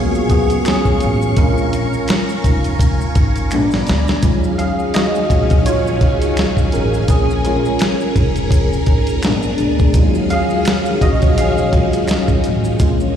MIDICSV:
0, 0, Header, 1, 5, 480
1, 0, Start_track
1, 0, Key_signature, -6, "minor"
1, 0, Tempo, 714286
1, 922, Time_signature, 4, 2, 24, 8
1, 8846, End_track
2, 0, Start_track
2, 0, Title_t, "String machine"
2, 0, Program_c, 0, 50
2, 0, Note_on_c, 0, 68, 81
2, 0, Note_on_c, 0, 77, 76
2, 0, Note_on_c, 0, 80, 77
2, 0, Note_on_c, 0, 85, 87
2, 902, Note_off_c, 0, 80, 0
2, 903, Note_off_c, 0, 68, 0
2, 917, Note_on_c, 0, 82, 87
2, 919, Note_on_c, 0, 80, 72
2, 2333, Note_off_c, 0, 77, 0
2, 2333, Note_off_c, 0, 85, 0
2, 2355, Note_on_c, 0, 74, 67
2, 2357, Note_on_c, 0, 83, 85
2, 2821, Note_off_c, 0, 80, 0
2, 2821, Note_off_c, 0, 82, 0
2, 2834, Note_off_c, 0, 74, 0
2, 2835, Note_off_c, 0, 83, 0
2, 2836, Note_on_c, 0, 77, 74
2, 2838, Note_on_c, 0, 51, 83
2, 2839, Note_on_c, 0, 68, 91
2, 2840, Note_on_c, 0, 54, 73
2, 2841, Note_on_c, 0, 61, 75
2, 4740, Note_off_c, 0, 77, 0
2, 4741, Note_off_c, 0, 51, 0
2, 4742, Note_off_c, 0, 54, 0
2, 4742, Note_off_c, 0, 61, 0
2, 4767, Note_on_c, 0, 61, 74
2, 4767, Note_on_c, 0, 70, 78
2, 6190, Note_off_c, 0, 61, 0
2, 6209, Note_on_c, 0, 62, 66
2, 6665, Note_off_c, 0, 70, 0
2, 6681, Note_off_c, 0, 62, 0
2, 6689, Note_on_c, 0, 51, 77
2, 6689, Note_on_c, 0, 54, 72
2, 6691, Note_on_c, 0, 77, 75
2, 6692, Note_on_c, 0, 61, 76
2, 8586, Note_off_c, 0, 54, 0
2, 8587, Note_off_c, 0, 51, 0
2, 8587, Note_off_c, 0, 77, 0
2, 8588, Note_off_c, 0, 61, 0
2, 8601, Note_on_c, 0, 58, 81
2, 8605, Note_on_c, 0, 61, 76
2, 8846, Note_off_c, 0, 58, 0
2, 8846, Note_off_c, 0, 61, 0
2, 8846, Note_off_c, 0, 68, 0
2, 8846, End_track
3, 0, Start_track
3, 0, Title_t, "Tine electric piano"
3, 0, Program_c, 1, 4
3, 0, Control_c, 1, 64, 127
3, 0, Note_on_c, 1, 54, 52
3, 0, Note_on_c, 1, 56, 48
3, 0, Note_on_c, 1, 58, 71
3, 0, Note_on_c, 1, 59, 76
3, 0, Note_on_c, 1, 61, 48
3, 0, Note_on_c, 1, 65, 56
3, 0, Note_on_c, 1, 66, 94
3, 0, Note_on_c, 1, 68, 99
3, 0, Note_on_c, 1, 70, 99
3, 0, Note_on_c, 1, 73, 104
3, 182, Note_off_c, 1, 59, 0
3, 192, Note_off_c, 1, 68, 0
3, 200, Note_on_c, 1, 68, 87
3, 214, Note_on_c, 1, 59, 66
3, 431, Note_off_c, 1, 59, 0
3, 435, Note_off_c, 1, 68, 0
3, 443, Note_on_c, 1, 68, 87
3, 458, Note_off_c, 1, 61, 0
3, 458, Note_on_c, 1, 61, 73
3, 903, Note_off_c, 1, 61, 0
3, 923, Note_off_c, 1, 70, 0
3, 923, Note_on_c, 1, 70, 83
3, 926, Note_off_c, 1, 56, 0
3, 926, Note_on_c, 1, 56, 54
3, 930, Control_c, 1, 64, 0
3, 931, Note_off_c, 1, 66, 0
3, 933, Note_off_c, 1, 65, 0
3, 934, Note_on_c, 1, 61, 64
3, 935, Note_off_c, 1, 54, 0
3, 935, Note_off_c, 1, 58, 0
3, 937, Note_off_c, 1, 68, 0
3, 937, Note_off_c, 1, 73, 0
3, 939, Note_on_c, 1, 65, 61
3, 1053, Control_c, 1, 64, 127
3, 1375, Note_off_c, 1, 70, 0
3, 1384, Note_off_c, 1, 61, 0
3, 1617, Note_off_c, 1, 56, 0
3, 1624, Note_off_c, 1, 65, 0
3, 2367, Note_on_c, 1, 56, 57
3, 2370, Control_c, 1, 64, 0
3, 2372, Note_on_c, 1, 59, 52
3, 2376, Note_on_c, 1, 62, 61
3, 2478, Control_c, 1, 64, 127
3, 2695, Note_off_c, 1, 56, 0
3, 2698, Note_off_c, 1, 59, 0
3, 2699, Note_off_c, 1, 62, 0
3, 2841, Note_on_c, 1, 54, 53
3, 2843, Note_on_c, 1, 56, 51
3, 2848, Note_on_c, 1, 61, 50
3, 2848, Note_on_c, 1, 65, 59
3, 2851, Control_c, 1, 64, 0
3, 2964, Control_c, 1, 64, 127
3, 3080, Note_on_c, 1, 77, 100
3, 3094, Note_on_c, 1, 68, 81
3, 3312, Note_off_c, 1, 68, 0
3, 3321, Note_on_c, 1, 75, 96
3, 3328, Note_off_c, 1, 77, 0
3, 3333, Note_on_c, 1, 66, 76
3, 3775, Note_off_c, 1, 75, 0
3, 3781, Note_off_c, 1, 66, 0
3, 3802, Note_on_c, 1, 73, 94
3, 3806, Note_off_c, 1, 65, 0
3, 3814, Note_on_c, 1, 65, 76
3, 4501, Note_off_c, 1, 65, 0
3, 4525, Note_on_c, 1, 70, 82
3, 4527, Note_off_c, 1, 61, 0
3, 4536, Note_on_c, 1, 61, 63
3, 4544, Note_off_c, 1, 73, 0
3, 4735, Note_off_c, 1, 54, 0
3, 4736, Note_off_c, 1, 56, 0
3, 4753, Note_off_c, 1, 61, 0
3, 4770, Control_c, 1, 64, 0
3, 4771, Note_off_c, 1, 70, 0
3, 4771, Note_on_c, 1, 68, 83
3, 4783, Note_on_c, 1, 61, 67
3, 4879, Control_c, 1, 64, 127
3, 4996, Note_off_c, 1, 61, 0
3, 5004, Note_on_c, 1, 70, 83
3, 5009, Note_on_c, 1, 56, 57
3, 5011, Note_on_c, 1, 61, 66
3, 5014, Note_off_c, 1, 68, 0
3, 5015, Note_on_c, 1, 65, 62
3, 5456, Note_off_c, 1, 70, 0
3, 5463, Note_off_c, 1, 61, 0
3, 5699, Note_off_c, 1, 56, 0
3, 5702, Note_off_c, 1, 65, 0
3, 6209, Note_on_c, 1, 56, 57
3, 6212, Control_c, 1, 64, 0
3, 6212, Note_on_c, 1, 59, 54
3, 6218, Note_on_c, 1, 62, 63
3, 6331, Control_c, 1, 64, 127
3, 6662, Note_off_c, 1, 56, 0
3, 6663, Note_off_c, 1, 59, 0
3, 6667, Note_off_c, 1, 62, 0
3, 6688, Note_on_c, 1, 54, 56
3, 6690, Control_c, 1, 64, 0
3, 6692, Note_on_c, 1, 56, 49
3, 6692, Note_on_c, 1, 61, 49
3, 6698, Note_on_c, 1, 65, 61
3, 6817, Control_c, 1, 64, 127
3, 6924, Note_on_c, 1, 77, 112
3, 6940, Note_on_c, 1, 68, 88
3, 7376, Note_off_c, 1, 77, 0
3, 7378, Note_off_c, 1, 54, 0
3, 7380, Note_off_c, 1, 56, 0
3, 7380, Note_off_c, 1, 61, 0
3, 7383, Note_off_c, 1, 65, 0
3, 7384, Note_off_c, 1, 68, 0
3, 7406, Note_on_c, 1, 75, 101
3, 7420, Note_on_c, 1, 66, 77
3, 7635, Note_off_c, 1, 66, 0
3, 7645, Note_on_c, 1, 77, 95
3, 7651, Note_off_c, 1, 75, 0
3, 7664, Note_on_c, 1, 68, 73
3, 7894, Note_on_c, 1, 54, 53
3, 7896, Note_on_c, 1, 56, 46
3, 7896, Note_on_c, 1, 61, 43
3, 7900, Note_on_c, 1, 65, 56
3, 8105, Note_off_c, 1, 54, 0
3, 8106, Note_off_c, 1, 56, 0
3, 8106, Note_off_c, 1, 61, 0
3, 8108, Note_off_c, 1, 65, 0
3, 8610, Note_on_c, 1, 56, 56
3, 8612, Control_c, 1, 64, 0
3, 8613, Note_on_c, 1, 61, 48
3, 8618, Note_on_c, 1, 65, 57
3, 8734, Control_c, 1, 64, 127
3, 8846, Note_off_c, 1, 56, 0
3, 8846, Note_off_c, 1, 61, 0
3, 8846, Note_off_c, 1, 65, 0
3, 8846, Note_off_c, 1, 68, 0
3, 8846, Note_off_c, 1, 77, 0
3, 8846, End_track
4, 0, Start_track
4, 0, Title_t, "Upright bass"
4, 0, Program_c, 2, 32
4, 0, Note_on_c, 2, 34, 103
4, 129, Note_off_c, 2, 34, 0
4, 206, Note_on_c, 2, 37, 88
4, 405, Note_off_c, 2, 37, 0
4, 697, Note_on_c, 2, 33, 92
4, 892, Note_off_c, 2, 33, 0
4, 928, Note_on_c, 2, 34, 106
4, 1240, Note_off_c, 2, 34, 0
4, 1649, Note_on_c, 2, 29, 93
4, 2048, Note_off_c, 2, 29, 0
4, 2128, Note_on_c, 2, 32, 87
4, 2378, Note_off_c, 2, 32, 0
4, 2378, Note_on_c, 2, 34, 94
4, 2573, Note_off_c, 2, 34, 0
4, 2618, Note_on_c, 2, 38, 87
4, 2812, Note_off_c, 2, 38, 0
4, 2850, Note_on_c, 2, 39, 89
4, 3161, Note_off_c, 2, 39, 0
4, 3570, Note_on_c, 2, 34, 95
4, 3969, Note_off_c, 2, 34, 0
4, 4047, Note_on_c, 2, 37, 91
4, 4246, Note_off_c, 2, 37, 0
4, 4536, Note_on_c, 2, 33, 87
4, 4731, Note_off_c, 2, 33, 0
4, 4768, Note_on_c, 2, 34, 101
4, 5080, Note_off_c, 2, 34, 0
4, 5489, Note_on_c, 2, 29, 93
4, 5889, Note_off_c, 2, 29, 0
4, 5966, Note_on_c, 2, 32, 81
4, 6217, Note_off_c, 2, 32, 0
4, 6217, Note_on_c, 2, 34, 93
4, 6412, Note_off_c, 2, 34, 0
4, 6457, Note_on_c, 2, 38, 87
4, 6652, Note_off_c, 2, 38, 0
4, 6689, Note_on_c, 2, 39, 101
4, 7000, Note_off_c, 2, 39, 0
4, 7409, Note_on_c, 2, 34, 99
4, 7809, Note_off_c, 2, 34, 0
4, 7888, Note_on_c, 2, 37, 90
4, 8087, Note_off_c, 2, 37, 0
4, 8375, Note_on_c, 2, 33, 88
4, 8571, Note_off_c, 2, 33, 0
4, 8609, Note_on_c, 2, 34, 97
4, 8846, Note_off_c, 2, 34, 0
4, 8846, End_track
5, 0, Start_track
5, 0, Title_t, "Drums"
5, 98, Note_on_c, 9, 82, 52
5, 166, Note_off_c, 9, 82, 0
5, 199, Note_on_c, 9, 42, 61
5, 200, Note_on_c, 9, 36, 99
5, 200, Note_on_c, 9, 82, 49
5, 266, Note_off_c, 9, 42, 0
5, 267, Note_off_c, 9, 36, 0
5, 267, Note_off_c, 9, 82, 0
5, 336, Note_on_c, 9, 42, 55
5, 340, Note_on_c, 9, 82, 50
5, 403, Note_off_c, 9, 42, 0
5, 407, Note_off_c, 9, 82, 0
5, 437, Note_on_c, 9, 26, 68
5, 437, Note_on_c, 9, 82, 71
5, 444, Note_on_c, 9, 42, 79
5, 457, Note_on_c, 9, 38, 115
5, 504, Note_off_c, 9, 26, 0
5, 504, Note_off_c, 9, 82, 0
5, 511, Note_off_c, 9, 42, 0
5, 524, Note_off_c, 9, 38, 0
5, 573, Note_on_c, 9, 36, 83
5, 573, Note_on_c, 9, 82, 46
5, 640, Note_off_c, 9, 36, 0
5, 641, Note_off_c, 9, 82, 0
5, 675, Note_on_c, 9, 42, 57
5, 686, Note_on_c, 9, 82, 46
5, 742, Note_off_c, 9, 42, 0
5, 753, Note_off_c, 9, 82, 0
5, 819, Note_on_c, 9, 82, 54
5, 886, Note_off_c, 9, 82, 0
5, 918, Note_on_c, 9, 42, 87
5, 920, Note_on_c, 9, 36, 115
5, 921, Note_on_c, 9, 82, 66
5, 985, Note_off_c, 9, 42, 0
5, 987, Note_off_c, 9, 36, 0
5, 988, Note_off_c, 9, 82, 0
5, 1060, Note_on_c, 9, 82, 46
5, 1127, Note_off_c, 9, 82, 0
5, 1163, Note_on_c, 9, 42, 69
5, 1166, Note_on_c, 9, 82, 44
5, 1230, Note_off_c, 9, 42, 0
5, 1233, Note_off_c, 9, 82, 0
5, 1300, Note_on_c, 9, 82, 46
5, 1367, Note_off_c, 9, 82, 0
5, 1396, Note_on_c, 9, 42, 76
5, 1403, Note_on_c, 9, 26, 67
5, 1403, Note_on_c, 9, 82, 61
5, 1412, Note_on_c, 9, 38, 111
5, 1463, Note_off_c, 9, 42, 0
5, 1470, Note_off_c, 9, 26, 0
5, 1470, Note_off_c, 9, 82, 0
5, 1479, Note_off_c, 9, 38, 0
5, 1540, Note_on_c, 9, 82, 46
5, 1607, Note_off_c, 9, 82, 0
5, 1642, Note_on_c, 9, 36, 89
5, 1642, Note_on_c, 9, 42, 68
5, 1648, Note_on_c, 9, 82, 48
5, 1709, Note_off_c, 9, 36, 0
5, 1709, Note_off_c, 9, 42, 0
5, 1715, Note_off_c, 9, 82, 0
5, 1777, Note_on_c, 9, 42, 48
5, 1780, Note_on_c, 9, 82, 45
5, 1844, Note_off_c, 9, 42, 0
5, 1847, Note_off_c, 9, 82, 0
5, 1878, Note_on_c, 9, 36, 101
5, 1885, Note_on_c, 9, 42, 98
5, 1891, Note_on_c, 9, 82, 74
5, 1945, Note_off_c, 9, 36, 0
5, 1952, Note_off_c, 9, 42, 0
5, 1958, Note_off_c, 9, 82, 0
5, 2023, Note_on_c, 9, 82, 54
5, 2090, Note_off_c, 9, 82, 0
5, 2119, Note_on_c, 9, 42, 68
5, 2121, Note_on_c, 9, 36, 101
5, 2122, Note_on_c, 9, 82, 50
5, 2186, Note_off_c, 9, 42, 0
5, 2188, Note_off_c, 9, 36, 0
5, 2189, Note_off_c, 9, 82, 0
5, 2255, Note_on_c, 9, 42, 50
5, 2263, Note_on_c, 9, 82, 47
5, 2323, Note_off_c, 9, 42, 0
5, 2330, Note_off_c, 9, 82, 0
5, 2358, Note_on_c, 9, 26, 73
5, 2358, Note_on_c, 9, 82, 74
5, 2363, Note_on_c, 9, 42, 78
5, 2425, Note_off_c, 9, 26, 0
5, 2425, Note_off_c, 9, 82, 0
5, 2430, Note_off_c, 9, 42, 0
5, 2494, Note_on_c, 9, 82, 46
5, 2512, Note_on_c, 9, 38, 64
5, 2561, Note_off_c, 9, 82, 0
5, 2579, Note_off_c, 9, 38, 0
5, 2598, Note_on_c, 9, 42, 59
5, 2604, Note_on_c, 9, 82, 45
5, 2617, Note_on_c, 9, 38, 89
5, 2666, Note_off_c, 9, 42, 0
5, 2671, Note_off_c, 9, 82, 0
5, 2684, Note_off_c, 9, 38, 0
5, 2738, Note_on_c, 9, 82, 52
5, 2750, Note_on_c, 9, 38, 94
5, 2806, Note_off_c, 9, 82, 0
5, 2817, Note_off_c, 9, 38, 0
5, 2839, Note_on_c, 9, 82, 67
5, 2840, Note_on_c, 9, 42, 88
5, 2842, Note_on_c, 9, 36, 116
5, 2906, Note_off_c, 9, 82, 0
5, 2907, Note_off_c, 9, 42, 0
5, 2909, Note_off_c, 9, 36, 0
5, 2981, Note_on_c, 9, 82, 44
5, 3048, Note_off_c, 9, 82, 0
5, 3083, Note_on_c, 9, 82, 42
5, 3084, Note_on_c, 9, 42, 66
5, 3151, Note_off_c, 9, 42, 0
5, 3151, Note_off_c, 9, 82, 0
5, 3221, Note_on_c, 9, 82, 43
5, 3289, Note_off_c, 9, 82, 0
5, 3319, Note_on_c, 9, 42, 77
5, 3322, Note_on_c, 9, 26, 61
5, 3322, Note_on_c, 9, 82, 59
5, 3335, Note_on_c, 9, 38, 111
5, 3386, Note_off_c, 9, 42, 0
5, 3389, Note_off_c, 9, 26, 0
5, 3389, Note_off_c, 9, 82, 0
5, 3403, Note_off_c, 9, 38, 0
5, 3461, Note_on_c, 9, 82, 44
5, 3528, Note_off_c, 9, 82, 0
5, 3562, Note_on_c, 9, 36, 90
5, 3565, Note_on_c, 9, 42, 69
5, 3567, Note_on_c, 9, 82, 44
5, 3629, Note_off_c, 9, 36, 0
5, 3632, Note_off_c, 9, 42, 0
5, 3634, Note_off_c, 9, 82, 0
5, 3696, Note_on_c, 9, 42, 49
5, 3700, Note_on_c, 9, 82, 44
5, 3704, Note_on_c, 9, 36, 98
5, 3764, Note_off_c, 9, 42, 0
5, 3767, Note_off_c, 9, 82, 0
5, 3771, Note_off_c, 9, 36, 0
5, 3802, Note_on_c, 9, 42, 96
5, 3813, Note_on_c, 9, 82, 67
5, 3869, Note_off_c, 9, 42, 0
5, 3880, Note_off_c, 9, 82, 0
5, 3944, Note_on_c, 9, 82, 52
5, 4011, Note_off_c, 9, 82, 0
5, 4039, Note_on_c, 9, 42, 64
5, 4040, Note_on_c, 9, 36, 102
5, 4106, Note_off_c, 9, 42, 0
5, 4107, Note_off_c, 9, 36, 0
5, 4177, Note_on_c, 9, 42, 55
5, 4180, Note_on_c, 9, 82, 44
5, 4244, Note_off_c, 9, 42, 0
5, 4248, Note_off_c, 9, 82, 0
5, 4280, Note_on_c, 9, 26, 73
5, 4280, Note_on_c, 9, 82, 69
5, 4282, Note_on_c, 9, 42, 72
5, 4295, Note_on_c, 9, 38, 107
5, 4348, Note_off_c, 9, 26, 0
5, 4348, Note_off_c, 9, 82, 0
5, 4349, Note_off_c, 9, 42, 0
5, 4362, Note_off_c, 9, 38, 0
5, 4414, Note_on_c, 9, 36, 84
5, 4420, Note_on_c, 9, 82, 45
5, 4481, Note_off_c, 9, 36, 0
5, 4487, Note_off_c, 9, 82, 0
5, 4518, Note_on_c, 9, 42, 56
5, 4531, Note_on_c, 9, 82, 45
5, 4585, Note_off_c, 9, 42, 0
5, 4598, Note_off_c, 9, 82, 0
5, 4662, Note_on_c, 9, 82, 53
5, 4729, Note_off_c, 9, 82, 0
5, 4759, Note_on_c, 9, 42, 90
5, 4761, Note_on_c, 9, 36, 112
5, 4765, Note_on_c, 9, 82, 71
5, 4826, Note_off_c, 9, 42, 0
5, 4828, Note_off_c, 9, 36, 0
5, 4833, Note_off_c, 9, 82, 0
5, 4908, Note_on_c, 9, 82, 44
5, 4975, Note_off_c, 9, 82, 0
5, 5004, Note_on_c, 9, 42, 64
5, 5007, Note_on_c, 9, 82, 42
5, 5071, Note_off_c, 9, 42, 0
5, 5074, Note_off_c, 9, 82, 0
5, 5143, Note_on_c, 9, 82, 42
5, 5210, Note_off_c, 9, 82, 0
5, 5237, Note_on_c, 9, 42, 77
5, 5245, Note_on_c, 9, 26, 59
5, 5245, Note_on_c, 9, 82, 62
5, 5253, Note_on_c, 9, 38, 108
5, 5304, Note_off_c, 9, 42, 0
5, 5312, Note_off_c, 9, 26, 0
5, 5312, Note_off_c, 9, 82, 0
5, 5320, Note_off_c, 9, 38, 0
5, 5378, Note_on_c, 9, 82, 48
5, 5445, Note_off_c, 9, 82, 0
5, 5481, Note_on_c, 9, 36, 84
5, 5482, Note_on_c, 9, 42, 65
5, 5487, Note_on_c, 9, 82, 49
5, 5549, Note_off_c, 9, 36, 0
5, 5550, Note_off_c, 9, 42, 0
5, 5554, Note_off_c, 9, 82, 0
5, 5616, Note_on_c, 9, 42, 45
5, 5620, Note_on_c, 9, 82, 47
5, 5683, Note_off_c, 9, 42, 0
5, 5688, Note_off_c, 9, 82, 0
5, 5717, Note_on_c, 9, 36, 99
5, 5724, Note_on_c, 9, 42, 98
5, 5734, Note_on_c, 9, 82, 70
5, 5784, Note_off_c, 9, 36, 0
5, 5791, Note_off_c, 9, 42, 0
5, 5801, Note_off_c, 9, 82, 0
5, 5866, Note_on_c, 9, 82, 50
5, 5933, Note_off_c, 9, 82, 0
5, 5957, Note_on_c, 9, 42, 63
5, 5960, Note_on_c, 9, 36, 103
5, 6024, Note_off_c, 9, 42, 0
5, 6027, Note_off_c, 9, 36, 0
5, 6094, Note_on_c, 9, 42, 50
5, 6105, Note_on_c, 9, 82, 45
5, 6161, Note_off_c, 9, 42, 0
5, 6173, Note_off_c, 9, 82, 0
5, 6200, Note_on_c, 9, 26, 69
5, 6200, Note_on_c, 9, 42, 78
5, 6200, Note_on_c, 9, 82, 69
5, 6213, Note_on_c, 9, 38, 103
5, 6267, Note_off_c, 9, 26, 0
5, 6267, Note_off_c, 9, 42, 0
5, 6267, Note_off_c, 9, 82, 0
5, 6281, Note_off_c, 9, 38, 0
5, 6334, Note_on_c, 9, 82, 49
5, 6401, Note_off_c, 9, 82, 0
5, 6438, Note_on_c, 9, 42, 55
5, 6447, Note_on_c, 9, 82, 46
5, 6505, Note_off_c, 9, 42, 0
5, 6514, Note_off_c, 9, 82, 0
5, 6580, Note_on_c, 9, 82, 53
5, 6584, Note_on_c, 9, 36, 95
5, 6647, Note_off_c, 9, 82, 0
5, 6651, Note_off_c, 9, 36, 0
5, 6679, Note_on_c, 9, 42, 88
5, 6680, Note_on_c, 9, 82, 67
5, 6681, Note_on_c, 9, 36, 121
5, 6746, Note_off_c, 9, 42, 0
5, 6747, Note_off_c, 9, 82, 0
5, 6749, Note_off_c, 9, 36, 0
5, 6818, Note_on_c, 9, 82, 46
5, 6886, Note_off_c, 9, 82, 0
5, 6919, Note_on_c, 9, 82, 42
5, 6924, Note_on_c, 9, 42, 68
5, 6987, Note_off_c, 9, 82, 0
5, 6991, Note_off_c, 9, 42, 0
5, 7055, Note_on_c, 9, 82, 42
5, 7122, Note_off_c, 9, 82, 0
5, 7158, Note_on_c, 9, 42, 79
5, 7160, Note_on_c, 9, 26, 62
5, 7160, Note_on_c, 9, 82, 64
5, 7174, Note_on_c, 9, 38, 116
5, 7225, Note_off_c, 9, 42, 0
5, 7227, Note_off_c, 9, 26, 0
5, 7227, Note_off_c, 9, 82, 0
5, 7241, Note_off_c, 9, 38, 0
5, 7295, Note_on_c, 9, 82, 49
5, 7362, Note_off_c, 9, 82, 0
5, 7401, Note_on_c, 9, 36, 90
5, 7404, Note_on_c, 9, 42, 72
5, 7406, Note_on_c, 9, 82, 46
5, 7469, Note_off_c, 9, 36, 0
5, 7471, Note_off_c, 9, 42, 0
5, 7473, Note_off_c, 9, 82, 0
5, 7539, Note_on_c, 9, 42, 47
5, 7539, Note_on_c, 9, 82, 46
5, 7544, Note_on_c, 9, 36, 95
5, 7606, Note_off_c, 9, 42, 0
5, 7606, Note_off_c, 9, 82, 0
5, 7612, Note_off_c, 9, 36, 0
5, 7645, Note_on_c, 9, 42, 94
5, 7650, Note_on_c, 9, 82, 72
5, 7712, Note_off_c, 9, 42, 0
5, 7717, Note_off_c, 9, 82, 0
5, 7780, Note_on_c, 9, 82, 51
5, 7847, Note_off_c, 9, 82, 0
5, 7881, Note_on_c, 9, 36, 102
5, 7882, Note_on_c, 9, 42, 62
5, 7948, Note_off_c, 9, 36, 0
5, 7949, Note_off_c, 9, 42, 0
5, 8017, Note_on_c, 9, 82, 50
5, 8020, Note_on_c, 9, 42, 54
5, 8085, Note_off_c, 9, 82, 0
5, 8087, Note_off_c, 9, 42, 0
5, 8115, Note_on_c, 9, 26, 71
5, 8115, Note_on_c, 9, 82, 72
5, 8125, Note_on_c, 9, 42, 78
5, 8138, Note_on_c, 9, 38, 107
5, 8183, Note_off_c, 9, 26, 0
5, 8183, Note_off_c, 9, 82, 0
5, 8192, Note_off_c, 9, 42, 0
5, 8205, Note_off_c, 9, 38, 0
5, 8252, Note_on_c, 9, 82, 49
5, 8254, Note_on_c, 9, 36, 84
5, 8319, Note_off_c, 9, 82, 0
5, 8321, Note_off_c, 9, 36, 0
5, 8358, Note_on_c, 9, 42, 62
5, 8364, Note_on_c, 9, 82, 47
5, 8425, Note_off_c, 9, 42, 0
5, 8431, Note_off_c, 9, 82, 0
5, 8496, Note_on_c, 9, 82, 55
5, 8563, Note_off_c, 9, 82, 0
5, 8596, Note_on_c, 9, 82, 73
5, 8599, Note_on_c, 9, 42, 86
5, 8601, Note_on_c, 9, 36, 116
5, 8664, Note_off_c, 9, 82, 0
5, 8667, Note_off_c, 9, 42, 0
5, 8668, Note_off_c, 9, 36, 0
5, 8737, Note_on_c, 9, 82, 44
5, 8804, Note_off_c, 9, 82, 0
5, 8846, End_track
0, 0, End_of_file